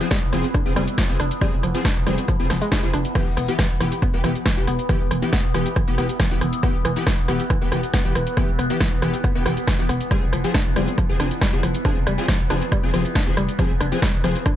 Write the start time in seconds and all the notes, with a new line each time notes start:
Already playing: E3 B3
0.01 F3 C4 G#4, closed hi-hat, shaker
0.11 G3, kick, cross-stick, snare, closed hi-hat, shaker
0.22 F1, shaker
0.33 F1 F3 C4 G#4, cross-stick, open hi-hat
0.44 closed hi-hat, shaker
0.54 D4, kick, cross-stick, closed hi-hat, shaker
0.66 F1 F3 C4 G#4, shaker
0.76 F1 F3 G3 C4 G#4, cross-stick, open hi-hat
0.88 closed hi-hat, shaker
0.98 F3, kick, cross-stick, snare, closed hi-hat, shaker
1.09 F1 F3 C4 G#4, shaker
1.20 F1 D4, cross-stick, open hi-hat
1.31 closed hi-hat, shaker
1.41 F3 G3 C4 G#4, kick, cross-stick, closed hi-hat, shaker
1.53 F1, shaker
1.63 F1 F3, cross-stick, open hi-hat
1.75 F3 C4 G#4, closed hi-hat, shaker
1.85 D4, kick, cross-stick, snare, closed hi-hat, shaker
1.96 F1, shaker
2.07 F1 F3 G3 C4 G#4, cross-stick, open hi-hat
2.18 closed hi-hat, shaker
2.28 F3, kick, cross-stick, closed hi-hat, shaker
2.40 F1 F3 C4 G#4, shaker
2.50 F1 F3, cross-stick, snare, open hi-hat
2.61 G#3, closed hi-hat, shaker
2.72 F3 C4 D4 G#4, kick, cross-stick, snare, closed hi-hat, shaker
2.83 F1 F3 C4 G#4, shaker
2.93 F1 D4, cross-stick, open hi-hat
3.05 closed hi-hat, shaker
3.15 E3 B3 G4, kick, cross-stick, closed hi-hat, crash, shaker
3.27 E1, shaker
3.37 E1 B3, cross-stick, open hi-hat
3.48 E3 B3 G4, closed hi-hat, shaker
3.59 E3, kick, cross-stick, snare, closed hi-hat, shaker
3.70 E1, shaker
3.80 E1 E3 B3 G4, cross-stick, open hi-hat
3.92 closed hi-hat, shaker
4.02 B3, kick, cross-stick, closed hi-hat, shaker
4.14 E1 E3 B3 G4, shaker
4.24 E1 E3 B3 G4, cross-stick, open hi-hat
4.35 closed hi-hat, shaker
4.46 E3, kick, cross-stick, snare, closed hi-hat, shaker
4.57 E1 E3 B3 G4, shaker
4.67 E1 B3, cross-stick, open hi-hat
4.79 closed hi-hat, shaker
4.89 E3 B3 G4, kick, cross-stick, closed hi-hat, shaker
5.01 E1, shaker
5.11 E1 E3, cross-stick, open hi-hat
5.22 E3 B3 G4, closed hi-hat, shaker
5.33 B3, kick, cross-stick, snare, closed hi-hat, shaker
5.44 E1, shaker
5.54 E1 E3 B3 G4, cross-stick, open hi-hat
5.66 closed hi-hat, shaker
5.76 E3, kick, cross-stick, closed hi-hat, shaker
5.88 E1 E3 B3 G4, shaker
5.98 E1 E3 B3 G4, cross-stick, open hi-hat
6.09 closed hi-hat, shaker
6.20 E3, kick, cross-stick, snare, closed hi-hat, shaker
6.31 E1 E3 B3 G4, shaker
6.41 E1 E3, cross-stick, open hi-hat
6.53 closed hi-hat, shaker
6.63 E3 B3 G4, kick, cross-stick, closed hi-hat, shaker
6.75 E1, shaker
6.85 E1 E3, cross-stick, open hi-hat
6.96 E3 B3 G4, closed hi-hat, shaker
7.07 E3, kick, cross-stick, snare, closed hi-hat, shaker
7.18 E1, shaker
7.28 E1 E3 B3 G4, cross-stick, open hi-hat
7.40 closed hi-hat, shaker
7.50 E3, kick, cross-stick, closed hi-hat, shaker
7.61 E1 E3 B3 G4, shaker
7.72 E1 E3 B3 G4, cross-stick, open hi-hat
7.83 closed hi-hat, shaker
7.94 B3, kick, cross-stick, snare, closed hi-hat, shaker
8.05 E1 E3 B3 G4, shaker
8.15 E1 E3, cross-stick, open hi-hat
8.27 closed hi-hat, shaker
8.37 E3 B3 G4, kick, cross-stick, closed hi-hat, shaker
8.48 E1, shaker
8.59 E1 B3, cross-stick, open hi-hat
8.70 E3 B3 G4, closed hi-hat, shaker
8.80 E3, kick, cross-stick, snare, closed hi-hat, shaker
8.92 E1, shaker
9.02 E1 E3 B3 G4, cross-stick, open hi-hat
9.14 closed hi-hat, shaker
9.24 B3, kick, cross-stick, closed hi-hat, shaker
9.35 E1 E3 B3 G4, shaker
9.46 E1 E3 B3 G4, cross-stick, open hi-hat
9.57 closed hi-hat, shaker
9.67 E3, kick, cross-stick, snare, closed hi-hat, shaker
9.79 E1 E3 B3 G4, shaker
9.89 E1 B3, cross-stick, open hi-hat
10.01 closed hi-hat, shaker
10.11 F3 G3 C4 G#4, kick, cross-stick, closed hi-hat, shaker
10.22 F1, shaker
10.33 F1 F3, cross-stick, open hi-hat
10.44 F3 C4 G#4, closed hi-hat, shaker
10.54 D4, kick, cross-stick, snare, closed hi-hat, shaker
10.66 F1, shaker
10.76 F1 F3 G3 C4 G#4, cross-stick, open hi-hat
10.88 closed hi-hat, shaker
10.98 F3, kick, cross-stick, closed hi-hat, shaker
11.09 F1 F3 C4 G#4, shaker
11.20 F1 F3 C4 D4 G#4, cross-stick, open hi-hat
11.31 closed hi-hat, shaker
11.41 G3, kick, cross-stick, snare, closed hi-hat, shaker
11.53 F1 F3 C4 G#4, shaker
11.63 F1 F3, cross-stick, open hi-hat
11.75 closed hi-hat, shaker
11.85 F3 C4 D4 G#4, kick, cross-stick, closed hi-hat, shaker
11.96 F1, shaker
12.07 F1 G3, cross-stick, open hi-hat
12.18 F3 C4 G#4, closed hi-hat, shaker
12.28 F3, kick, cross-stick, snare, closed hi-hat, shaker
12.40 F1, shaker
12.50 F1 F3 C4 D4 G#4, cross-stick, open hi-hat
12.62 closed hi-hat, shaker
12.72 G3, kick, cross-stick, closed hi-hat, shaker
12.83 F1 F3 C4 G#4, shaker
12.94 F1 F3 C4 G#4, cross-stick, open hi-hat
13.05 closed hi-hat, shaker
13.15 D4, kick, cross-stick, snare, closed hi-hat, shaker
13.27 F1 F3 C4 G#4, shaker
13.37 F1 G3, cross-stick, open hi-hat
13.49 closed hi-hat, shaker
13.59 F3 C4 G#4, kick, cross-stick, closed hi-hat, shaker
13.70 F1, shaker
13.80 F1 D4, cross-stick, open hi-hat
13.92 F3 C4 G#4, closed hi-hat, shaker
14.02 G3, kick, cross-stick, snare, closed hi-hat, shaker
14.14 F1, shaker
14.24 F1 F3 C4 G#4, cross-stick, open hi-hat
14.35 closed hi-hat, shaker
14.46 D4, kick, cross-stick, closed hi-hat, shaker